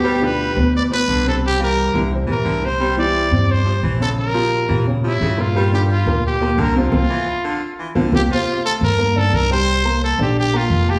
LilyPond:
<<
  \new Staff \with { instrumentName = "Trumpet" } { \time 4/4 \key c \mixolydian \tempo 4 = 175 g'8 b'4. d''8 b'4 a'8 | g'8 bes'4 r4 bes'4 c''8~ | c''8 d''4. c''4 r8 a'8 | bes'2 r8 e'4 f'8~ |
f'8 g'8 f'4 g'4 bes'8 f'8~ | f'2. r8 g'8 | f'4 a'8 bes'4 a'8 bes'8 c''8~ | c''4 a'8 g'8 g'8 f'4 g'8 | }
  \new Staff \with { instrumentName = "Upright piano" } { \time 4/4 \key c \mixolydian <b, b b'>8 <d d' f'>4 <b, b b'>4 <b, b b'>4 <c c' c''>8~ | <c c' c''>8 <g g' f''>4 <e e' g'>8 <c c' c''>8 <e e' g'>4 <c c' c''>8 | <c c' c''>8 <e e' g'>4 <c c' c''>4 <c c' c''>4 <des des' des''>8~ | <des des' des''>8 <f f' g'>4 <f f' g'>8 <des des' des''>8 <f des' g'>4 <bes, bes bes'>8 |
<bes, bes bes'>8 <d d' f'>4 <bes, bes bes'>4 <bes, bes bes'>4 <c c' c''>8 | <bes c' f'>8 r2 r8 <bes c' f'>8 <bes c' f'>8 | <c c' c''>4 <a a' a''>4 <bes bes' bes''>8 <d d' d''>4 <g g' g''>8~ | <g g' g''>8 <bes bes' bes''>4 <d d' d''>4 <bes bes' bes''>4 <a a' a''>8 | }
  \new Staff \with { instrumentName = "Baritone saxophone" } { \clef bass \time 4/4 \key c \mixolydian g2~ g8 f8 d4~ | d8 e4 d4 e8 d4 | g2~ g8 f8 e4~ | e8 f4 e4 f8 des4 |
g2~ g8 f8 d4~ | d8 e4 d4 e8 d4 | r1 | r1 | }
  \new Staff \with { instrumentName = "Upright bass" } { \clef bass \time 4/4 \key c \mixolydian d,4. d,4. c,4~ | c,4. c,4 bes,,8 c,4~ | c,4. g,4. bes,,4~ | bes,,4. bes,4. g,4~ |
g,4. d,4. c,4 | c,8 r2 r8 c,8 c,8 | r4. g,4. c,4~ | c,4. bes,,4. f,,4 | }
>>